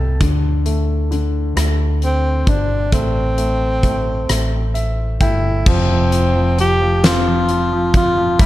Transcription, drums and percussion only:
0.21 kick, closed hi-hat
0.66 closed hi-hat
1.12 closed hi-hat
1.57 cross-stick, closed hi-hat
2.02 closed hi-hat
2.47 kick, closed hi-hat
2.92 kick, closed hi-hat
3.38 closed hi-hat
3.83 kick, closed hi-hat
4.29 cross-stick, closed hi-hat
4.75 closed hi-hat
5.21 kick, closed hi-hat
5.66 kick, crash
6.12 closed hi-hat
6.59 closed hi-hat
7.04 snare, closed hi-hat
7.49 closed hi-hat
7.94 kick, closed hi-hat
8.39 kick, closed hi-hat

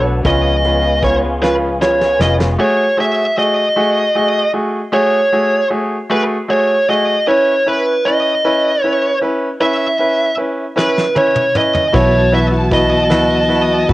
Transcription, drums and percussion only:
0.25 kick, closed hi-hat
0.65 closed hi-hat
1.03 kick, closed hi-hat
1.43 snare
1.82 snare
2.01 snare
2.21 snare
2.40 snare
10.78 snare
10.98 snare
11.16 high tom
11.36 mid tom
11.55 mid tom
11.75 floor tom
11.94 kick, ride
12.34 ride
12.72 kick, ride
13.10 snare, ride
13.50 ride
13.89 kick, ride

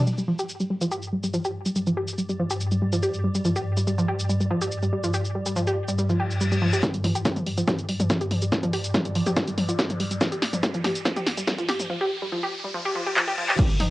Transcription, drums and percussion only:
0.07 shaker
0.18 shaker
0.39 shaker
0.49 shaker
0.60 shaker
0.81 shaker
0.91 shaker
1.02 shaker
1.23 shaker
1.34 shaker
1.45 shaker
1.66 shaker
1.76 shaker
1.87 shaker
2.08 shaker
2.18 shaker
2.29 shaker
2.50 shaker
2.61 shaker
2.71 shaker
2.93 shaker
3.03 shaker
3.14 shaker
3.35 shaker
3.45 shaker
3.56 shaker
3.77 shaker
3.87 shaker
3.98 shaker
4.19 shaker
4.29 shaker
4.40 shaker
4.62 shaker
4.72 shaker
4.83 shaker
5.04 shaker
5.14 shaker
5.25 shaker
5.46 shaker
5.56 shaker
5.67 shaker
5.88 shaker
5.98 shaker
6.09 shaker
6.31 shaker
6.41 shaker
6.52 shaker
6.73 shaker
6.83 kick, snare, closed hi-hat, shaker
6.94 closed hi-hat, shaker
7.04 open hi-hat, mid tom
7.15 closed hi-hat, shaker
7.25 kick, snare, closed hi-hat, shaker
7.36 closed hi-hat, mid tom, shaker
7.46 open hi-hat
7.57 closed hi-hat, shaker
7.67 kick, snare, closed hi-hat, mid tom, shaker
7.78 closed hi-hat, shaker
7.88 open hi-hat
8.00 closed hi-hat, mid tom, shaker
8.10 kick, snare, closed hi-hat, shaker
8.21 closed hi-hat, shaker
8.31 open hi-hat, mid tom
8.42 closed hi-hat, shaker
8.52 kick, snare, closed hi-hat, shaker
8.63 closed hi-hat, mid tom, shaker
8.73 open hi-hat
8.84 closed hi-hat, shaker
8.94 kick, snare, closed hi-hat, mid tom, shaker
9.05 closed hi-hat, shaker
9.15 open hi-hat
9.26 closed hi-hat, mid tom, shaker
9.36 kick, snare, closed hi-hat, shaker
9.47 closed hi-hat, shaker
9.57 open hi-hat, mid tom
9.69 closed hi-hat, shaker
9.79 kick, snare, closed hi-hat, shaker
9.90 closed hi-hat, mid tom, shaker
10.00 open hi-hat
10.11 closed hi-hat, shaker
10.21 kick, snare, closed hi-hat, mid tom, shaker
10.32 closed hi-hat, shaker
10.42 snare, open hi-hat
10.53 closed hi-hat, mid tom, shaker
10.63 kick, snare, closed hi-hat, shaker
10.74 closed hi-hat, shaker
10.84 snare, open hi-hat, mid tom
10.95 closed hi-hat, shaker
11.05 kick, snare, closed hi-hat, shaker
11.16 closed hi-hat, mid tom, shaker
11.27 snare, open hi-hat
11.37 closed hi-hat, shaker
11.48 kick, snare, closed hi-hat, mid tom, shaker
11.59 closed hi-hat, shaker
11.69 snare, open hi-hat
11.80 closed hi-hat, mid tom, shaker
13.17 clap
13.49 clap
13.59 kick, closed hi-hat, crash, ride, shaker
13.70 closed hi-hat, shaker
13.80 open hi-hat, mid tom

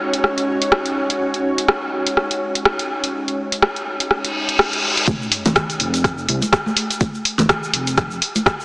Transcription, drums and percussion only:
0.14 closed hi-hat
0.24 cross-stick
0.38 closed hi-hat
0.62 closed hi-hat
0.72 cross-stick
0.86 closed hi-hat
1.10 closed hi-hat
1.34 closed hi-hat
1.58 closed hi-hat
1.68 cross-stick
2.07 closed hi-hat
2.17 cross-stick
2.31 closed hi-hat
2.55 closed hi-hat
2.65 cross-stick
2.79 closed hi-hat
3.04 closed hi-hat
3.28 closed hi-hat
3.52 closed hi-hat
3.62 cross-stick
3.76 closed hi-hat
4.00 closed hi-hat
4.11 cross-stick
4.25 closed hi-hat
4.49 closed hi-hat
4.59 cross-stick
4.73 closed hi-hat
4.97 closed hi-hat
5.08 kick, closed hi-hat, high conga, shaker
5.22 shaker
5.32 open hi-hat
5.46 closed hi-hat, high conga, low conga, shaker
5.56 kick, cross-stick, closed hi-hat, low conga, shaker
5.70 open hi-hat, shaker
5.80 open hi-hat
5.94 closed hi-hat, shaker
6.04 kick, cross-stick, closed hi-hat, shaker
6.18 shaker
6.29 open hi-hat, high conga
6.41 closed hi-hat, high conga, shaker
6.52 kick, cross-stick, closed hi-hat, shaker
6.66 high conga, shaker
6.77 open hi-hat
6.91 closed hi-hat, shaker
7.01 kick, closed hi-hat, high conga, shaker
7.15 shaker
7.25 open hi-hat
7.38 closed hi-hat, high conga, low conga, shaker
7.49 kick, cross-stick, closed hi-hat, low conga, shaker
7.63 shaker
7.74 open hi-hat
7.87 closed hi-hat, shaker
7.97 kick, cross-stick, closed hi-hat, shaker
8.11 shaker
8.22 open hi-hat
8.35 closed hi-hat, high conga, shaker
8.46 kick, cross-stick, closed hi-hat, shaker
8.60 shaker

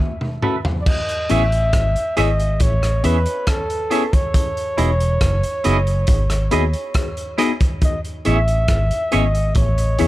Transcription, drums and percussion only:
0.21 mid tom
0.42 mid tom
0.65 floor tom
0.86 kick, crash
1.09 closed hi-hat
1.29 closed hi-hat
1.52 closed hi-hat
1.73 kick, cross-stick, closed hi-hat
1.96 closed hi-hat
2.17 closed hi-hat
2.40 closed hi-hat
2.60 kick, closed hi-hat
2.83 cross-stick, closed hi-hat
3.04 closed hi-hat
3.26 closed hi-hat
3.47 kick, cross-stick, closed hi-hat
3.70 closed hi-hat
3.91 closed hi-hat
4.13 kick, closed hi-hat
4.34 kick, closed hi-hat
4.57 closed hi-hat
4.78 closed hi-hat
5.00 closed hi-hat
5.21 kick, cross-stick, closed hi-hat
5.43 closed hi-hat
5.64 closed hi-hat
5.87 closed hi-hat
6.07 kick, closed hi-hat
6.30 cross-stick, closed hi-hat
6.51 closed hi-hat
6.73 closed hi-hat
6.94 kick, cross-stick, closed hi-hat
7.17 closed hi-hat
7.38 cross-stick, closed hi-hat
7.60 kick, closed hi-hat
7.82 kick, closed hi-hat
8.05 closed hi-hat
8.25 closed hi-hat
8.48 closed hi-hat
8.68 kick, cross-stick, closed hi-hat
8.91 closed hi-hat
9.12 closed hi-hat
9.35 closed hi-hat
9.55 kick, closed hi-hat
9.78 closed hi-hat
9.99 closed hi-hat

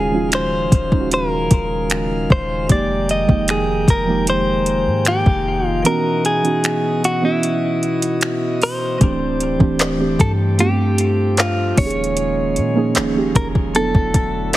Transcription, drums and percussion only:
0.32 finger snap, closed hi-hat
0.72 kick, closed hi-hat
0.92 kick
1.11 closed hi-hat
1.51 kick, closed hi-hat
1.90 finger snap, closed hi-hat
2.30 kick
2.69 kick, closed hi-hat
3.09 closed hi-hat
3.29 kick
3.48 finger snap, closed hi-hat
3.88 kick, closed hi-hat
4.27 closed hi-hat
4.66 closed hi-hat
5.05 finger snap, closed hi-hat
5.26 kick
5.85 closed hi-hat
6.25 closed hi-hat
6.45 closed hi-hat
6.64 finger snap, closed hi-hat
7.04 closed hi-hat
7.43 closed hi-hat
7.83 closed hi-hat
8.02 closed hi-hat
8.21 finger snap, closed hi-hat
8.62 open hi-hat
9.01 kick, closed hi-hat
9.40 closed hi-hat
9.60 kick
9.79 clap, closed hi-hat
10.19 kick, closed hi-hat
10.59 closed hi-hat
10.98 closed hi-hat
11.37 clap, closed hi-hat
11.77 kick, closed hi-hat, open hi-hat
11.90 closed hi-hat
12.04 closed hi-hat
12.17 closed hi-hat
12.56 closed hi-hat
12.95 clap, closed hi-hat
13.35 kick, closed hi-hat
13.55 kick
13.75 closed hi-hat
13.95 kick
14.14 kick, closed hi-hat
14.53 closed hi-hat

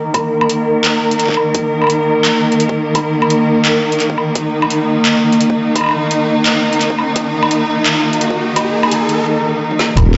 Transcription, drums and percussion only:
0.14 kick, closed hi-hat, low woodblock
0.41 low woodblock
0.49 closed hi-hat
0.84 clap, closed hi-hat
1.11 closed hi-hat
1.20 clap, closed hi-hat
1.24 clap
1.29 kick, clap
1.33 clap
1.37 low woodblock
1.55 kick, closed hi-hat
1.82 low woodblock
1.84 low woodblock
1.87 closed hi-hat, low woodblock
2.25 clap, closed hi-hat
2.52 closed hi-hat
2.60 closed hi-hat
2.69 kick
2.95 kick, closed hi-hat, low woodblock
3.22 low woodblock
3.30 closed hi-hat
3.65 clap, closed hi-hat
3.92 closed hi-hat
4.00 clap, closed hi-hat
4.10 kick
4.18 low woodblock
4.35 kick, closed hi-hat
4.62 low woodblock
4.70 closed hi-hat
5.05 clap, closed hi-hat
5.32 closed hi-hat
5.41 closed hi-hat
5.50 kick
5.76 kick, closed hi-hat, low woodblock
5.78 low woodblock
5.81 low woodblock
5.84 low woodblock
5.86 low woodblock
5.89 low woodblock
5.91 low woodblock
6.11 closed hi-hat
6.46 clap, closed hi-hat
6.73 closed hi-hat
6.81 clap, closed hi-hat
6.90 kick
6.99 low woodblock
7.16 kick, closed hi-hat
7.43 low woodblock
7.51 closed hi-hat
7.86 clap, closed hi-hat
8.13 closed hi-hat
8.21 closed hi-hat
8.30 kick
8.56 kick, closed hi-hat, low woodblock
8.83 low woodblock
8.91 closed hi-hat
9.09 closed hi-hat
9.71 high tom
9.79 snare
9.89 mid tom
9.97 kick, closed hi-hat, low woodblock

